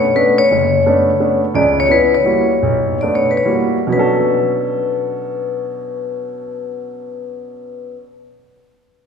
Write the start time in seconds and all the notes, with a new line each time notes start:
Already playing: C#5
0.15 A3 B3 C#4 D4 B4
0.38 C#5
0.51 F#1
0.86 A3 B3 C#4 D4
1.20 A3 B3 C#4 D4
1.54 C#2 C#3 D5
1.80 C#5
1.89 B3 C#4 E4 B4
2.15 C#5
2.24 G3 A#3 E4 F#4
2.62 B1
3.01 A3 B3 D4 D5
3.15 C#5
3.31 B4
3.37 C#5
3.45 G3 A#3 E4 F#4
3.87 B2 F#3
3.93 C#4 D4 B4
3.99 A4